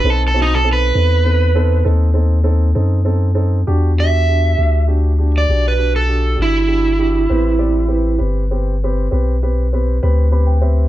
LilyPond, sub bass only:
\new Staff \with { instrumentName = "Sub bass" } { \clef bass \time 12/8 \key e \minor \tempo 4. = 66 b,,4. e,4. dis,4. fis,4. | e,4. d,4. b,,4. g,,4. | a,,4. g,,4. b,,4. d,4. | }